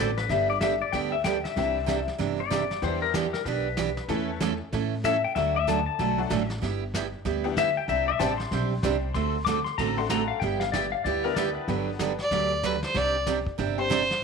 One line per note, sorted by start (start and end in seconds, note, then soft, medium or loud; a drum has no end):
0.00 0.25 A1 medium
0.00 0.17 D5 medium
0.18 0.30 B4 medium
0.18 snare soft
0.29 0.80 G1 medium
0.29 0.51 D3 medium
0.29 0.51 G3 medium
0.29 0.51 B3 medium
0.29 0.51 D4 medium
0.29 0.51 G4 medium
0.29 0.49 E5 medium
0.29 brush sweep soft
0.29 kick soft
0.29 snare soft
0.50 0.60 D5 medium
0.61 0.73 D3 medium
0.61 0.73 G3 medium
0.61 0.73 B3 medium
0.61 0.73 D4 medium
0.61 0.73 G4 medium
0.61 0.80 E5 medium
0.61 kick soft
0.61 snare medium
0.61 hi-hat pedal medium
0.82 0.93 D5 medium
0.92 1.44 D2 medium
0.92 1.14 D3 medium
0.92 1.14 G3 medium
0.92 1.14 B3 medium
0.92 1.14 D4 medium
0.92 1.14 G4 medium
0.92 1.12 G5 medium
0.92 brush sweep soft
0.92 kick soft
0.92 snare soft
1.12 1.24 E5 medium
1.24 1.36 D3 medium
1.24 1.37 G3 medium
1.24 1.37 B3 medium
1.24 1.37 D4 medium
1.24 1.37 G4 medium
1.24 1.44 G5 medium
1.24 kick soft
1.24 snare medium
1.24 hi-hat pedal medium
1.44 2.06 E5 loud
1.44 snare soft
1.56 2.07 C2 medium
1.56 1.77 C3 medium
1.56 1.77 E3 medium
1.56 2.04 G3 medium
1.56 2.04 C4 medium
1.56 1.77 D4 soft
1.56 2.04 D4 medium
1.56 2.04 E4 medium
1.56 1.77 G4 medium
1.56 2.05 G4 medium
1.56 brush sweep soft
1.56 kick soft
1.56 snare soft
1.86 1.98 C3 medium
1.86 1.99 E3 medium
1.86 1.99 D4 medium
1.86 1.99 G4 medium
1.86 kick soft
1.86 snare medium
1.86 hi-hat pedal medium
2.08 snare soft
2.18 2.70 G1 medium
2.18 2.39 C3 medium
2.18 2.40 E3 medium
2.18 2.40 D4 medium
2.18 2.40 G4 medium
2.18 brush sweep medium
2.18 kick soft
2.18 snare soft
2.40 2.82 D5 medium
2.50 2.62 C3 medium
2.50 2.62 E3 medium
2.50 2.63 D4 medium
2.50 2.63 G4 medium
2.50 kick soft
2.50 snare medium
2.50 hi-hat pedal medium
2.71 snare soft
2.82 3.33 E2 medium
2.82 3.03 E3 soft
2.82 3.30 G3 medium
2.82 3.30 B3 medium
2.82 3.03 B3 medium
2.82 3.30 D4 medium
2.82 3.04 D4 medium
2.82 3.30 E4 medium
2.82 3.30 G4 medium
2.82 3.04 G4 medium
2.82 3.02 C5 medium
2.82 brush sweep soft
2.82 kick soft
2.82 snare soft
3.02 3.14 A#4 medium
3.14 3.26 E3 medium
3.14 3.26 B3 medium
3.14 3.26 D4 medium
3.14 3.33 G4 medium
3.14 3.26 G4 medium
3.14 kick soft
3.14 snare medium
3.14 hi-hat pedal medium
3.33 3.45 A#4 medium
3.33 snare soft
3.45 3.96 B1 medium
3.45 3.67 E3 medium
3.45 3.67 B3 medium
3.45 3.67 D4 medium
3.45 3.67 G4 medium
3.45 4.38 B4 medium
3.45 brush sweep soft
3.45 kick soft
3.45 snare soft
3.77 3.89 E3 medium
3.77 3.89 B3 medium
3.77 3.89 D4 medium
3.77 3.89 G4 medium
3.77 kick soft
3.77 snare medium
3.77 hi-hat pedal medium
3.97 snare soft
4.08 4.59 E2 medium
4.08 4.56 E3 medium
4.08 4.30 E3 medium
4.08 4.29 A3 medium
4.08 4.56 A3 medium
4.08 4.56 C#4 medium
4.08 4.30 C#4 medium
4.08 4.57 E4 medium
4.08 4.30 E4 medium
4.08 4.57 A4 medium
4.08 4.30 A4 medium
4.08 brush sweep soft
4.08 kick soft
4.08 snare soft
4.40 4.52 E3 medium
4.40 4.52 A3 medium
4.40 4.52 C#4 medium
4.40 4.52 E4 medium
4.40 4.52 A4 medium
4.40 kick soft
4.40 snare medium
4.40 hi-hat pedal medium
4.72 5.23 A2 medium
4.72 4.93 E3 medium
4.72 4.93 A3 medium
4.72 4.94 C#4 medium
4.72 4.94 E4 medium
4.72 4.94 A4 medium
4.72 brush sweep soft
4.72 kick soft
4.72 snare soft
5.04 5.15 E3 medium
5.04 5.16 A3 medium
5.04 5.16 C#4 medium
5.04 5.16 E4 medium
5.04 5.16 A4 medium
5.04 5.24 E5 medium
5.04 kick soft
5.04 snare medium
5.04 hi-hat pedal medium
5.24 5.35 G5 medium
5.35 5.86 D2 medium
5.35 5.56 D3 medium
5.35 5.56 F#3 soft
5.35 5.56 A3 medium
5.35 5.57 D4 medium
5.35 5.57 F#4 medium
5.35 5.54 E5 medium
5.35 brush sweep soft
5.35 kick soft
5.35 snare soft
5.56 5.68 E5 loud
5.67 5.78 D3 medium
5.67 5.79 F#3 medium
5.67 5.79 A3 medium
5.67 5.79 D4 medium
5.67 5.79 F#4 medium
5.67 5.85 A5 medium
5.67 kick soft
5.67 snare medium
5.67 hi-hat pedal medium
5.86 6.48 A5 loud
5.99 6.26 B1 medium
5.99 6.19 D3 medium
5.99 6.20 F#3 medium
5.99 6.20 A3 medium
5.99 6.20 D4 medium
5.99 6.20 F#4 medium
5.99 brush sweep soft
5.99 kick soft
5.99 snare soft
6.18 6.29 F#3 medium
6.18 6.29 A3 medium
6.18 6.30 D4 medium
6.18 6.30 F#4 medium
6.18 6.30 A4 medium
6.30 6.57 A1 medium
6.30 6.41 D3 medium
6.30 6.42 F#3 medium
6.30 6.42 A3 medium
6.30 6.42 D4 medium
6.30 6.42 F#4 medium
6.30 kick soft
6.30 snare medium
6.30 hi-hat pedal medium
6.50 snare soft
6.62 7.13 G1 medium
6.62 6.82 G3 medium
6.62 6.83 B3 soft
6.62 6.83 E4 medium
6.62 6.83 G4 medium
6.62 brush sweep soft
6.62 kick soft
6.62 snare soft
6.94 7.05 G3 medium
6.94 7.06 B3 medium
6.94 7.06 E4 medium
6.94 7.06 G4 medium
6.94 kick soft
6.94 snare medium
6.94 hi-hat pedal medium
7.25 7.76 D2 medium
7.25 7.46 G3 medium
7.25 7.46 B3 medium
7.25 7.46 E4 medium
7.25 7.46 G4 medium
7.25 brush sweep soft
7.25 kick soft
7.25 snare soft
7.44 7.56 G3 medium
7.44 7.56 B3 medium
7.44 7.56 D4 medium
7.44 7.56 E4 medium
7.44 7.56 G4 medium
7.57 7.68 G3 medium
7.57 7.69 B3 medium
7.57 7.69 E4 medium
7.57 7.69 G4 medium
7.57 7.77 E5 loud
7.57 kick soft
7.57 snare medium
7.57 hi-hat pedal medium
7.77 7.89 G5 medium
7.88 8.14 C2 medium
7.88 8.09 C3 soft
7.88 8.09 G3 medium
7.88 8.10 C4 medium
7.88 8.10 D4 medium
7.88 8.10 G4 medium
7.88 8.07 E5 medium
7.88 brush sweep soft
7.88 kick soft
7.88 snare soft
8.08 8.20 E5 loud
8.19 8.47 A1 medium
8.19 8.31 C3 medium
8.19 8.37 G3 medium
8.19 8.32 G3 medium
8.19 8.38 C4 medium
8.19 8.32 C4 medium
8.19 8.38 D4 medium
8.19 8.32 D4 medium
8.19 8.38 G4 medium
8.19 8.32 G4 medium
8.19 8.38 C5 medium
8.19 8.38 A5 medium
8.19 kick soft
8.19 snare medium
8.19 hi-hat pedal medium
8.38 9.00 C6 medium
8.38 snare soft
8.51 8.79 B1 medium
8.51 8.73 C3 medium
8.51 8.73 G3 medium
8.51 8.73 C4 medium
8.51 8.73 D4 medium
8.51 8.73 G4 medium
8.51 brush sweep medium
8.51 kick soft
8.51 snare soft
8.83 9.10 C2 medium
8.83 8.95 C3 medium
8.83 9.15 G3 medium
8.83 8.95 G3 medium
8.83 9.15 C4 medium
8.83 8.95 C4 medium
8.83 9.15 D4 medium
8.83 8.95 D4 medium
8.83 9.15 G4 medium
8.83 8.96 G4 medium
8.83 9.16 C5 medium
8.83 kick soft
8.83 snare medium
8.83 hi-hat pedal medium
9.14 9.66 D2 medium
9.14 9.36 D3 medium
9.14 9.36 A3 medium
9.14 9.36 C4 medium
9.14 9.36 F#4 medium
9.14 9.36 A4 medium
9.14 9.44 C6 medium
9.14 brush sweep medium
9.14 kick soft
9.14 snare soft
9.45 9.58 D3 medium
9.45 9.58 A3 medium
9.45 9.59 C4 medium
9.45 9.59 F#4 medium
9.45 9.59 A4 medium
9.45 9.64 D6 medium
9.45 kick soft
9.45 snare medium
9.45 hi-hat pedal medium
9.65 9.77 C6 medium
9.65 snare soft
9.78 10.29 A1 medium
9.78 9.99 D3 medium
9.78 9.99 A3 medium
9.78 10.00 C4 medium
9.78 10.00 F#4 medium
9.78 10.00 A4 medium
9.78 9.97 A#5 loud
9.78 brush sweep medium
9.78 kick soft
9.78 snare soft
9.97 10.39 A3 medium
9.97 10.39 C4 medium
9.97 10.40 D4 medium
9.97 10.40 F#4 medium
9.97 10.40 A4 medium
9.97 10.10 C6 medium
10.09 10.21 D3 medium
10.09 10.21 A3 medium
10.09 10.21 C4 medium
10.09 10.22 F#4 medium
10.09 10.22 A4 medium
10.09 10.29 A#5 loud
10.09 kick soft
10.09 snare medium
10.09 hi-hat pedal medium
10.28 10.41 F5 medium
10.40 10.93 G1 medium
10.40 10.63 G3 medium
10.40 10.63 B3 medium
10.40 10.63 E4 medium
10.40 10.63 G4 medium
10.40 10.60 G5 loud
10.40 brush sweep soft
10.40 kick soft
10.40 snare soft
10.60 10.72 F5 medium
10.60 snare medium
10.72 10.85 G3 medium
10.72 10.85 B3 medium
10.72 10.85 E4 medium
10.72 10.86 G4 medium
10.72 10.92 D5 medium
10.72 kick soft
10.72 snare medium
10.72 hi-hat pedal medium
10.92 11.04 F5 medium
11.04 11.56 D2 medium
11.04 11.26 G3 medium
11.04 11.26 B3 medium
11.04 11.26 E4 medium
11.04 11.27 G4 medium
11.04 11.24 D5 medium
11.04 brush sweep soft
11.04 kick soft
11.04 snare soft
11.24 11.66 B3 medium
11.24 11.66 D4 medium
11.24 11.66 E4 medium
11.24 11.66 G4 medium
11.24 11.36 A#4 medium
11.24 11.66 B4 medium
11.35 11.48 G3 medium
11.35 11.49 B3 medium
11.35 11.49 E4 loud
11.35 11.49 G4 medium
11.35 11.54 D5 medium
11.35 kick soft
11.35 snare medium
11.35 hi-hat pedal medium
11.55 11.68 B4 medium
11.68 12.19 G1 medium
11.68 11.89 D3 medium
11.68 11.89 F#3 medium
11.68 12.16 B3 medium
11.68 11.90 B3 medium
11.68 12.16 D4 medium
11.68 11.90 D4 medium
11.68 12.16 F#4 medium
11.68 12.16 G4 medium
11.68 11.90 G4 medium
11.68 12.16 B4 medium
11.68 brush sweep soft
11.68 kick soft
11.68 snare soft
11.99 12.11 D3 medium
11.99 12.12 F#3 medium
11.99 12.12 B3 medium
11.99 12.12 D4 medium
11.99 12.12 G4 medium
11.99 kick soft
11.99 snare medium
11.99 hi-hat pedal medium
12.19 12.67 D5 medium
12.19 snare soft
12.31 12.82 D2 medium
12.31 12.52 D3 medium
12.31 12.52 F#3 medium
12.31 12.52 B3 medium
12.31 12.53 D4 medium
12.31 12.53 G4 medium
12.31 brush sweep medium
12.31 kick soft
12.31 snare soft
12.63 12.75 D3 medium
12.63 12.75 F#3 medium
12.63 12.75 B3 medium
12.63 12.75 D4 medium
12.63 12.75 G4 medium
12.63 12.83 B4 medium
12.63 kick soft
12.63 snare medium
12.63 hi-hat pedal medium
12.83 12.98 C5 medium
12.83 snare soft
12.94 13.45 C2 medium
12.94 13.15 C3 medium
12.94 13.16 G3 medium
12.94 13.15 C4 medium
12.94 13.15 D4 medium
12.94 13.16 G4 medium
12.94 13.28 D5 medium
12.94 brush sweep soft
12.94 kick soft
12.94 snare soft
13.27 13.38 C3 medium
13.27 13.38 G3 medium
13.27 13.38 C4 medium
13.27 13.38 D4 medium
13.27 13.38 G4 medium
13.27 kick soft
13.27 snare medium
13.27 hi-hat pedal medium
13.46 kick soft
13.58 14.09 G1 medium
13.58 13.79 C3 medium
13.58 13.79 G3 medium
13.58 13.79 C4 medium
13.58 13.79 D4 medium
13.58 13.79 G4 medium
13.58 brush sweep soft
13.58 kick soft
13.58 snare soft
13.78 13.89 G3 medium
13.78 13.89 C4 medium
13.78 13.89 D4 medium
13.78 13.89 G4 medium
13.78 13.89 C5 medium
13.78 14.24 C5 medium
13.90 14.01 C3 medium
13.90 14.01 G3 medium
13.90 14.01 C4 medium
13.90 14.02 D4 medium
13.90 14.02 G4 medium
13.90 kick soft
13.90 snare medium
13.90 hi-hat pedal medium
14.11 snare soft